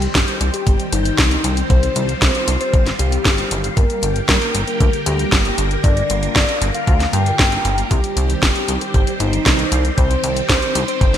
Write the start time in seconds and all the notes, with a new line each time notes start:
Already playing: D#3 G3 C4 G4 C5
0.02 closed hi-hat
0.15 G1 G4, kick, snare, closed hi-hat
0.28 closed hi-hat
0.41 C2, closed hi-hat
0.54 G4, closed hi-hat
0.67 G1, kick, closed hi-hat
0.80 closed hi-hat
0.92 G1 D#4, closed hi-hat
1.05 closed hi-hat
1.18 C2, kick, snare, closed hi-hat
1.31 closed hi-hat
1.44 C2, closed hi-hat
1.57 closed hi-hat
1.70 C2 F4 C5, kick, closed hi-hat
1.83 closed hi-hat
1.96 C2, closed hi-hat
2.09 closed hi-hat
2.22 C2 C5, kick, snare, closed hi-hat
2.35 closed hi-hat
2.48 C2, closed hi-hat
2.61 C5, closed hi-hat
2.73 G1, kick, closed hi-hat
2.86 snare, closed hi-hat
2.99 C2 G4, closed hi-hat
3.12 closed hi-hat
3.25 G1, kick, snare, closed hi-hat
3.38 closed hi-hat
3.51 G1, closed hi-hat
3.64 closed hi-hat
3.77 G1 D3 A#3 G4 A#4, kick, closed hi-hat
3.90 closed hi-hat
4.03 G1, closed hi-hat
4.16 closed hi-hat
4.29 G2 A#4, kick, snare, closed hi-hat
4.42 closed hi-hat
4.55 G1, closed hi-hat
4.67 A#4, closed hi-hat
4.80 D2, kick, closed hi-hat
4.93 closed hi-hat
5.06 D2 G4, closed hi-hat
5.19 closed hi-hat
5.32 G1, kick, snare, closed hi-hat
5.45 closed hi-hat
5.58 G1, closed hi-hat
5.71 closed hi-hat
5.84 G1 F4 D5, kick, closed hi-hat
5.97 closed hi-hat
6.10 G1, closed hi-hat
6.23 closed hi-hat
6.36 G1 D5, kick, snare, closed hi-hat
6.49 closed hi-hat
6.61 G1, closed hi-hat
6.74 F5, closed hi-hat
6.87 D2, kick, closed hi-hat
7.00 snare, closed hi-hat
7.13 G2 G5, closed hi-hat
7.26 closed hi-hat
7.39 G1, kick, snare, closed hi-hat
7.52 closed hi-hat
7.65 G1, closed hi-hat
7.78 closed hi-hat
7.91 C2 D#3 G3 C4 G4 C5, kick, closed hi-hat
8.04 closed hi-hat
8.17 C2, closed hi-hat
8.30 closed hi-hat
8.42 G1 G4, kick, snare, closed hi-hat
8.56 closed hi-hat
8.68 C2, closed hi-hat
8.81 G4, closed hi-hat
8.94 G1, kick, closed hi-hat
9.07 closed hi-hat
9.20 G1 D#4, closed hi-hat
9.33 closed hi-hat
9.46 C2, kick, snare, closed hi-hat
9.59 closed hi-hat
9.72 C2, closed hi-hat
9.85 closed hi-hat
9.98 C2 C5, kick, closed hi-hat
10.11 closed hi-hat
10.23 C2, closed hi-hat
10.37 closed hi-hat
10.49 C2 C5, kick, snare, closed hi-hat
10.62 closed hi-hat
10.75 C2, closed hi-hat
10.88 C5, closed hi-hat
11.01 G1, kick, closed hi-hat
11.14 snare, closed hi-hat